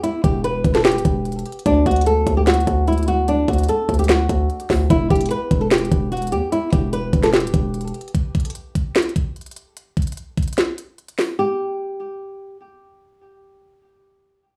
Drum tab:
HH |x-----------x-----------x-----------x-----x-----x---x---x---x-----------x---x---x---x---x---x---|x-----------x--x--x--x--x-----------x-----------x---x---x---x-----------x--x--x--x--x-----------|x-----------x--x--x--x--x-----------x--x--x--x--x-----------x-----------x-----x-----o-----------|x-----------x--x--x--x--x-----------x-----------x---x---x---x-----------x--x--x--x--x-----------|
SD |------------------------------------------o-----o-----------------------------------------------|------------------------------------------------o-----------------------------------------------|------------------------------------------------o-----------------------------------o-----------|------------------------------------------------o-----------------------------------------------|
BD |------------o-----------------------o-----------------------o-----------------------------------|o-----------o-----------------------o-----------------------o-----------------------------------|------------o-----------------------o-----------------------o-----------------------o-----------|o-----------o-----------------------o-----------------------o-----------------------------------|

HH |x-----------x-----------x-----------x-----x-----x---x---x---x-----------x---x---x---x---x---x---|x-----------x--x--x--x--x-----------x-----------x---x---x---x-----------x--x--x--x--x-----------|x-----------x--x--x--x--x-----------x--x--x--x--x-----------x-----------x-----x-----o-----------|------------------------------------------------------------------------------------------------|
SD |------------------------------------------o-----o-----------------------------------------------|------------------------------------------------o-----------------------------------------------|------------------------------------------------o-----------------------------------o-----------|------------------------------------------------------------------------------------------------|
BD |------------o-----------------------o-----------------------o-----------------------------------|o-----------o-----------------------o-----------------------o-----------------------------------|------------o-----------------------o-----------------------------------------------------------|------------------------------------------------------------------------------------------------|

HH |------------------------------------------------------------------------------------------------|
SD |------------------------------------------------------------------------------------------------|
BD |------------------------------------------------------------------------------------------------|